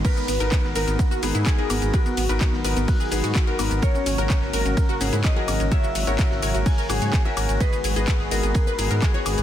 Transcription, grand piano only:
\new Staff \with { instrumentName = "Grand piano" } { \time 4/4 \key gis \minor \tempo 4 = 127 <b dis' ais'>8 r16 <b dis' ais'>8. <b dis' ais'>4 <b dis' gis'>8. <b dis' ais'>8. | <b dis' ais'>8 r16 <b dis' ais'>8. <b dis' ais'>4 <b dis' gis'>8. <b dis' ais'>8. | <cis' fis' ais'>8 r16 <cis' fis' ais'>8. <cis' fis' ais'>4 <cis' fis' gis'>8. <cis' fis' ais'>8. | <fis' ais'>8 r16 <cis' fis' ais'>8. <cis' fis' ais'>4 <cis' fis' gis'>8. <cis' fis' ais'>8. |
<b fis' gis'>8 r16 <b fis' gis'>8. <b fis' gis'>4 <b fis' gis'>8. <b fis' gis'>8. | }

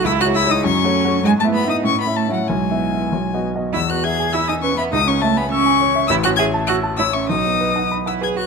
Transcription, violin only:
\new Staff \with { instrumentName = "Violin" } { \time 2/4 \key e \major \tempo 4 = 100 e'''16 fis'''16 e'''16 dis'''16 cis'''4 | gis''16 a''16 b''16 dis'''16 cis'''16 b''16 a''16 fis''16 | gis''4. r8 | e'''16 fis'''16 gis'''8 e'''16 dis'''16 cis'''16 b''16 |
dis'''16 cis'''16 a''16 b''16 cis'''4 | e'''16 fis'''16 gis'''8 fis'''8 e'''16 cis'''16 | dis'''4 r16 e'''16 gis'''16 fis'''16 | }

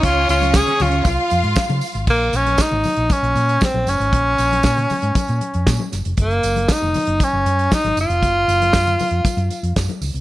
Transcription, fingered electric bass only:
\new Staff \with { instrumentName = "Fingered electric bass" } { \clef bass \time 4/4 \key ges \lydian \tempo 4 = 117 des,8 des,8. r16 des,8 c,16 r16 f,16 aes,16 r16 des16 r16 aes,,16 | bes,,8 bes,,8 r16 aes,,16 r16 bes,,16 r16 bes,,16 bes,8 r16 bes,,16 ges,,16 aes,,16 | bes,,8 bes,,8 bes,8 r16 aes,16 r16 bes,16 r16 f,16 bes,16 r16 ges,,16 f,,16 | ges,,8 ges,,8 r16 f,,16 r16 ges,,16 r16 ges,,16 ges,8 r16 aes,,16 ges,,16 f,,16 |
ges,,8 ges,,8 ges,8 r16 f,16 r16 ges,16 r16 f,16 ges,16 r16 des,16 c,16 | }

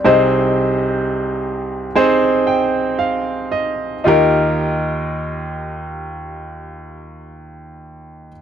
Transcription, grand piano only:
<<
  \new Staff \with { instrumentName = "Grand piano" } { \time 4/4 \key ees \major \tempo 4 = 54 << { r2 r8 g''8 f''8 ees''8 | r1 | } \\ { <c' ees' aes' c''>2 <c' ees' aes' c''>2 | <ees' f' g' bes'>1 | } >> }
  \new Staff \with { instrumentName = "Grand piano" } { \clef bass \time 4/4 \key ees \major <c, c>1 | ees,1 | }
>>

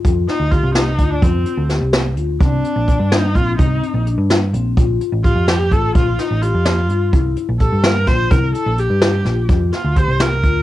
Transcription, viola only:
\new Staff \with { instrumentName = "Viola" } { \time 5/8 \key f \mixolydian \tempo 4 = 127 r8 ees'8 f'8 ees'8. d'16 | c'4 r4. | d'4. ees'8 f'8 | ees'4 r4. |
r4 f'8 g'8 a'8 | f'8 ees'8 f'4. | r4 a'8 bes'8 c''8 | bes'8 a'8 g'4. |
r8 f'8 c''8 bes'4 | }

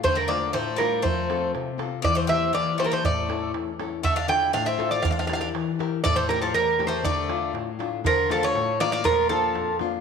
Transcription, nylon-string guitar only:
\new Staff \with { instrumentName = "Nylon-string guitar" } { \time 2/4 \key d \minor \tempo 4 = 120 d8 <a d' f'>8 a,8 <a d' f'>8 | f8 <c' f' a'>8 c8 <c' f' a'>8 | e8 <bes e' g'>8 e8 <bes e' g'>8 | a,8 <cis' e' a'>8 e,8 <cis' e' a'>8 |
d8 <d' f' a'>8 a,8 <d' f' a'>8 | e8 <e' g' bes'>8 e8 <e' g' bes'>8 | a,8 <a cis' g'>8 e,8 <a cis' g'>8 | d8 <a d' f'>8 a,8 <a d' f'>8 |
d8 <a d' f'>8 a,8 <a d' f'>8 | bes,8 <bes d' f'>8 f,8 <bes d' f'>8 | }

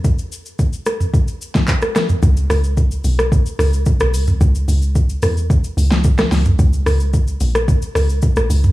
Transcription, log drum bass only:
\new Staff \with { instrumentName = "Log drum bass" } { \clef bass \time 4/4 \key cis \dorian \tempo 4 = 110 r1 | cis,8 cis,4 b,,8. r16 cis,8 r16 b,,16 cis,8 | cis,8 cis,4 e,8. r16 cis,4 cis,8 | cis,8 cis,4 ais,,8. r16 cis,8 r16 ais,,16 cis,8 | }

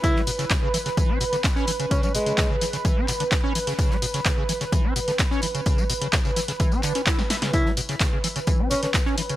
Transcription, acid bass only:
\new Staff \with { instrumentName = "Acid bass" } { \clef bass \time 4/4 \key cis \phrygian \tempo 4 = 128 cis16 gis16 b,16 cis16 cis16 cis16 e16 cis16 e16 cis'16 b,16 d16 cis'16 cis'16 e16 cis16 | cis16 gis16 b,16 cis16 cis16 cis16 e16 cis16 e16 cis'16 b,16 d16 cis'16 cis'16 e16 cis16 | cis16 gis16 b,16 cis16 cis16 cis16 e16 cis16 e16 cis'16 b,16 d16 cis'16 cis'16 e16 cis16 | cis16 gis16 b,16 cis16 cis16 cis16 e16 cis16 e16 cis'16 d16 cis'16 e'16 cis16 e'16 cis16 |
cis16 gis16 b,16 cis16 cis16 cis16 e16 cis16 e16 cis'16 b,16 d16 cis'16 cis'16 e16 cis16 | }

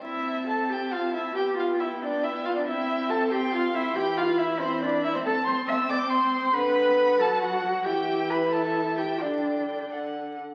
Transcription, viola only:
\new Staff \with { instrumentName = "Viola" } { \clef bass \time 6/8 \key c \major \tempo 4. = 92 c'2. | b2. | c'2. | e2. |
\key d \mixolydian c'2. | d4. fis4. | e2. | d4. d4 r8 | }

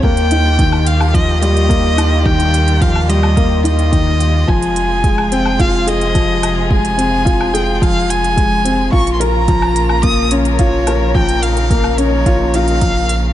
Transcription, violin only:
\new Staff \with { instrumentName = "Violin" } { \time 4/4 \key f \minor \tempo 4 = 108 g''4. f''8 ees''8 ees''4. | g''4 f''8 ees''4 ees''4. | aes''4. g''8 f''8 ees''4. | aes''4. g''16. g''32 f''8 aes''4. |
des'''16. c'''32 bes''4. ees'''8 des''4. | g''8 f''4 des''4 f''4. | }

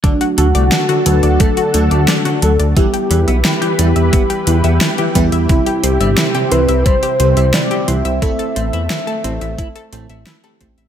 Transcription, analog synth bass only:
\new Staff \with { instrumentName = "Analog synth bass" } { \clef bass \time 4/4 \key d \mixolydian \tempo 4 = 88 r8 d,16 c,16 r8 d,16 d,16 r8 d,16 d,16 r8 d,16 d,16 | r8 e,16 b,,16 r8 e,16 e,16 r8 e,16 e,16 r8 e,16 e,16 | r8 c,16 g,,16 r8 c,16 c,16 r8 c,16 c,16 r8 c,16 c,16 | r8 a,,16 e,16 r8 a,,16 a,,16 r8 a,,16 a,,16 r8 a,,16 a,,16 | }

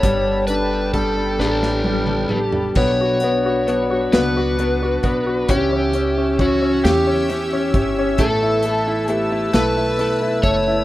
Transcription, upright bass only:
\new Staff \with { instrumentName = "Upright bass" } { \clef bass \time 6/8 \key b \minor \tempo 4. = 44 g,,4. a,,4 a,,8 | b,,4. cis,4 b,,8 | cis,4. e,4 g,,8 | a,,4. b,,4 fis,,8 | }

